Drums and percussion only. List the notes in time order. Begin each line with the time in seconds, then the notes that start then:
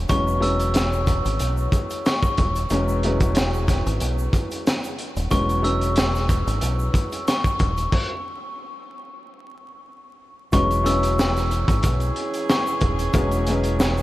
0.09 kick, closed hi-hat, shaker
0.28 shaker
0.42 closed hi-hat
0.59 closed hi-hat, shaker
0.74 snare, closed hi-hat, shaker
0.93 shaker
1.07 kick, closed hi-hat, shaker
1.25 closed hi-hat, shaker
1.39 closed hi-hat, shaker
1.57 shaker
1.72 kick, closed hi-hat, shaker
1.90 closed hi-hat, shaker
2.06 snare, closed hi-hat, shaker
2.23 kick, shaker
2.37 kick, closed hi-hat
2.56 closed hi-hat, shaker
2.70 closed hi-hat, shaker
2.88 shaker
3.03 closed hi-hat
3.20 kick, closed hi-hat, shaker
3.35 snare, closed hi-hat, shaker
3.54 shaker
3.68 kick, snare, closed hi-hat, shaker
3.86 closed hi-hat, shaker
4.00 closed hi-hat, shaker
4.19 shaker
4.33 kick, closed hi-hat, shaker
4.51 closed hi-hat, shaker
4.67 snare, closed hi-hat, shaker
4.84 closed hi-hat, shaker
4.98 closed hi-hat
5.16 closed hi-hat, shaker
5.31 kick, closed hi-hat, shaker
5.49 closed hi-hat, shaker
5.64 closed hi-hat
5.81 closed hi-hat, shaker
5.96 snare, closed hi-hat, shaker
6.15 snare, shaker
6.29 kick, closed hi-hat, shaker
6.48 closed hi-hat, shaker
6.61 closed hi-hat, shaker
6.79 shaker
6.94 kick, closed hi-hat, shaker
7.12 closed hi-hat, shaker
7.28 snare, closed hi-hat, shaker
7.44 kick, closed hi-hat, shaker
7.59 kick, closed hi-hat
7.77 closed hi-hat, shaker
7.92 kick, crash
10.53 kick, closed hi-hat, shaker
10.71 closed hi-hat, shaker
10.86 closed hi-hat, shaker
11.03 closed hi-hat, shaker
11.19 snare, shaker
11.36 snare, closed hi-hat, shaker
11.51 closed hi-hat, shaker
11.68 kick, closed hi-hat, shaker
11.83 kick, closed hi-hat, shaker
12.00 closed hi-hat, shaker
12.16 closed hi-hat
12.34 closed hi-hat, shaker
12.49 snare, shaker
12.67 shaker
12.81 kick, closed hi-hat
12.99 closed hi-hat, shaker
13.13 kick, closed hi-hat, shaker
13.31 closed hi-hat, shaker
13.47 closed hi-hat, shaker
13.64 closed hi-hat, shaker
13.80 snare, shaker
13.98 shaker